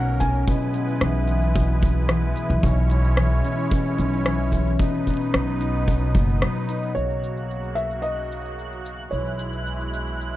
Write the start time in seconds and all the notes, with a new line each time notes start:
Already playing: B1 B2 F#3 A#3 C#4 D#4 A#4 F#5
0.08 cabasa
0.14 cabasa
0.20 C#4 G#5, kick, closed hi-hat, cabasa
0.28 cabasa
0.34 cabasa
0.47 B2 G#3 B3 E4 B4, kick, cabasa
0.61 cabasa
0.74 B3, closed hi-hat, cabasa
0.88 cabasa
1.01 B1 E3, cross-stick, cabasa
1.15 cabasa
1.28 E4, closed hi-hat, cabasa
1.42 cabasa
1.55 B2, kick, cabasa
1.69 cabasa
1.82 B3, kick, closed hi-hat, cabasa
1.89 cabasa
2.09 E3, cross-stick, cabasa
2.36 E4, closed hi-hat, cabasa
2.50 B1, cabasa
2.63 B1 B2 C#4 C#5, kick, cabasa
2.77 cabasa
2.90 B3, closed hi-hat, cabasa
3.04 cabasa
3.17 E3, cross-stick, cabasa
3.32 cabasa
3.44 C#4, closed hi-hat, cabasa
3.59 cabasa
3.71 B2, kick, cabasa
3.86 cabasa
3.98 B1 B3, closed hi-hat, cabasa
4.13 cabasa
4.25 E3, cross-stick, cabasa
4.52 C#4, kick, closed hi-hat, cabasa
4.67 cabasa
4.79 B2 F#3 B3 D#4 B4, kick, cabasa
4.94 cabasa
5.06 B3, kick, closed hi-hat, cabasa
5.11 closed hi-hat
5.14 closed hi-hat
5.17 closed hi-hat
5.21 cabasa
5.34 B1 F#3, cross-stick, cabasa
5.48 cabasa
5.61 D#4, closed hi-hat, cabasa
5.75 cabasa
5.82 cabasa
5.88 B2, kick, cabasa
5.95 cabasa
6.02 cabasa
6.15 F#1 B3, kick, closed hi-hat, cabasa
6.29 cabasa
6.42 F#3, cross-stick, cabasa
6.56 cabasa
6.69 D#4, closed hi-hat, cabasa
6.83 cabasa
6.95 B1 C#3 F#3 A#3 F#4 C#5 F#6, cabasa
7.10 cabasa
7.24 cabasa
7.37 cabasa
7.51 cabasa
7.64 cabasa
7.75 E5, cabasa
7.91 cabasa
8.02 D#5, cabasa
8.18 cabasa
8.23 cabasa
8.27 cabasa
8.32 cabasa
8.41 cabasa
8.45 cabasa
8.59 cabasa
8.72 cabasa
8.86 cabasa
9.11 B1 B2 E3 G#3 E4 C#5, cabasa
9.26 cabasa
9.39 cabasa
9.53 cabasa
9.67 cabasa
9.80 cabasa
9.94 cabasa
10.07 cabasa
10.21 cabasa